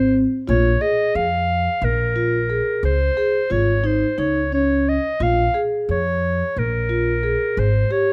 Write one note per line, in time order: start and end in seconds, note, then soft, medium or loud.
0.00 0.25 G#1 medium
0.00 0.22 C4 medium
0.00 0.21 C5 medium
0.48 0.74 A#1 medium
0.48 0.68 F4 medium
0.48 0.83 C#5 medium
0.81 1.22 G#4 medium
0.81 1.17 D#5 medium
1.15 1.67 F2 medium
1.15 1.86 F5 medium
1.82 2.59 A#1 medium
1.82 2.84 A#4 medium
2.16 2.36 F4 medium
2.50 2.90 G#4 medium
2.83 3.09 C#2 medium
2.83 3.53 C5 medium
3.17 3.37 G#4 medium
3.50 4.03 G#1 medium
3.50 3.71 F4 medium
3.50 3.88 C#5 medium
3.84 4.04 D#4 medium
3.84 4.20 C5 medium
4.18 4.97 C#2 medium
4.18 4.39 D#4 medium
4.18 4.53 C#5 medium
4.52 4.94 C#4 medium
4.52 4.90 C#5 medium
4.89 5.25 D#5 medium
5.20 5.46 A#1 medium
5.20 5.41 F4 medium
5.20 5.63 F5 medium
5.54 5.96 G#4 medium
5.89 6.41 F2 medium
5.89 6.60 C#5 medium
6.56 7.34 A#1 medium
6.56 7.61 A#4 medium
6.89 7.10 F4 medium
7.23 7.64 G#4 medium
7.57 7.83 G#1 medium
7.57 7.94 C5 medium
7.91 8.11 G4 medium
7.91 8.13 C#5 medium